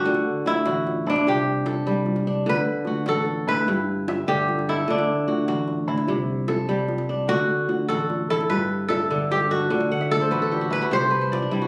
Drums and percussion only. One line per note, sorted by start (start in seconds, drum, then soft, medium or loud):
0.05 djembe tone medium
0.05 djembe bass medium
0.14 djembe slap medium
0.26 djembe slap soft
0.46 djembe slap soft
0.46 djembe tone medium
0.46 djembe bass medium
0.66 djembe slap medium
0.87 djembe tone medium
1.16 djembe slap medium
1.27 djembe tone medium
1.27 djembe bass medium
1.56 djembe slap soft
1.66 djembe slap medium
1.66 djembe bass medium
2.06 djembe slap soft
2.06 djembe tone medium
2.06 djembe bass medium
2.16 djembe slap soft
2.46 djembe tone medium
2.46 djembe bass medium
2.56 djembe slap medium
2.66 djembe slap soft
2.85 djembe slap soft
2.85 djembe tone medium
2.85 djembe bass medium
3.06 djembe slap medium
3.25 djembe tone medium
3.57 djembe slap medium
3.67 djembe tone medium
3.67 djembe bass medium
3.98 djembe slap soft
4.08 djembe slap medium
4.08 djembe tone medium
4.08 djembe bass medium
4.49 djembe slap soft
4.49 djembe tone medium
4.49 djembe bass medium
4.59 djembe slap soft
4.88 djembe tone medium
4.88 djembe bass medium
4.99 djembe slap medium
5.28 djembe tone medium
5.28 djembe bass medium
5.48 djembe slap medium
5.68 djembe tone medium
5.68 djembe bass medium
5.78 djembe slap soft
5.87 djembe slap soft
5.98 djembe slap soft
6.08 djembe tone medium
6.08 djembe bass medium
6.39 djembe slap soft
6.48 djembe slap medium
6.48 djembe tone medium
6.48 djembe bass medium
6.88 djembe tone medium
6.88 djembe bass medium
6.98 djembe slap soft
7.18 djembe slap soft
7.28 djembe tone medium
7.28 djembe bass medium
7.38 djembe slap medium
7.49 djembe slap soft
7.69 djembe slap soft
7.69 djembe tone medium
7.69 djembe bass medium
7.90 djembe slap medium
8.10 djembe tone medium
8.10 djembe bass medium
8.41 djembe slap soft
8.50 djembe tone medium
8.50 djembe bass medium
8.81 djembe slap soft
8.90 djembe slap medium
8.90 djembe tone medium
8.90 djembe bass medium
9.31 djembe slap soft
9.31 djembe tone medium
9.31 djembe bass medium
9.40 djembe slap soft
9.71 djembe tone medium
9.71 djembe bass medium
9.80 djembe slap medium
10.11 djembe slap soft
10.11 djembe tone medium
10.11 djembe bass medium
10.32 djembe slap medium
10.52 djembe tone medium
10.52 djembe bass medium
10.82 djembe slap medium
10.92 djembe tone medium
10.92 djembe bass medium
11.33 djembe slap medium
11.33 djembe tone medium
11.33 djembe bass medium